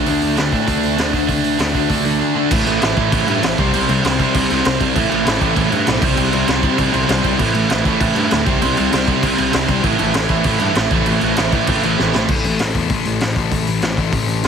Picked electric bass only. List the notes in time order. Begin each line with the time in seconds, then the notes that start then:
0.08 D2
0.23 D2
0.38 D2
0.53 A2
0.68 D2
0.84 D2
0.99 D2
1.14 D2
1.29 D2
1.44 D2
1.59 D2
1.75 D2
1.90 D2
2.05 D2
2.51 A1
2.66 A1
2.82 A1
2.97 A1
3.13 A1
3.27 G2
3.43 A1
3.59 C2
3.74 C2
3.89 C2
4.04 C2
4.35 C2
4.51 C2
4.66 C2
4.81 C2
4.96 A1
5.12 A1
5.27 A1
5.41 A1
5.57 A1
5.73 G2
5.87 B1
6.02 C2
6.18 C2
6.33 C2
6.49 C2
6.78 C2
6.94 C2
7.09 C2
7.24 C2
7.40 A1
7.54 A1
7.70 A1
7.86 A1
8.01 A1
8.16 G2
8.32 D2
8.47 C2
8.63 C2
8.79 C2
8.93 C2
9.23 C2
9.39 C2
9.55 C2
9.69 C2
9.84 A1
10.00 A1
10.15 A1
10.30 A1
10.45 A1
10.61 G2
10.76 A1
10.91 A1
11.07 A1
11.23 A1
11.38 A1
11.68 A1
11.84 A1
11.99 A1
12.14 A1
12.29 A1
12.45 A1
12.60 A1
12.75 E2
12.90 A1
13.06 A1
13.21 A1
13.36 A1
13.52 A1
13.68 A1
13.83 A1
13.97 A1
14.13 A1
14.29 A1
14.44 E2